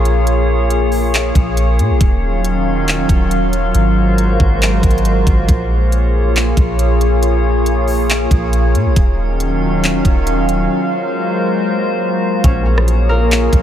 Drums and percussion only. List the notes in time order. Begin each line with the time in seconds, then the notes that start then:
0.05 closed hi-hat
0.27 closed hi-hat
0.70 closed hi-hat
0.92 open hi-hat
1.14 clap, closed hi-hat
1.35 kick, closed hi-hat
1.57 closed hi-hat
1.79 closed hi-hat
2.01 kick, closed hi-hat
2.44 closed hi-hat
2.88 clap, closed hi-hat
3.09 kick, closed hi-hat
3.31 closed hi-hat
3.53 closed hi-hat
3.75 closed hi-hat
4.18 closed hi-hat
4.40 kick
4.62 clap, closed hi-hat
4.83 kick, closed hi-hat
4.91 closed hi-hat
4.98 closed hi-hat
5.05 closed hi-hat
5.27 kick, closed hi-hat
5.49 kick, closed hi-hat
5.92 closed hi-hat
6.36 clap, closed hi-hat
6.57 kick, closed hi-hat
6.79 closed hi-hat
7.01 closed hi-hat
7.23 closed hi-hat
7.66 closed hi-hat
7.88 open hi-hat
8.10 clap, closed hi-hat
8.31 kick, closed hi-hat
8.53 closed hi-hat
8.75 closed hi-hat
8.96 kick, closed hi-hat
9.40 closed hi-hat
9.84 clap, closed hi-hat
10.05 kick, closed hi-hat
10.27 closed hi-hat
10.49 closed hi-hat
12.44 kick, closed hi-hat
12.78 cross-stick
12.88 closed hi-hat
13.31 clap, closed hi-hat
13.53 kick, closed hi-hat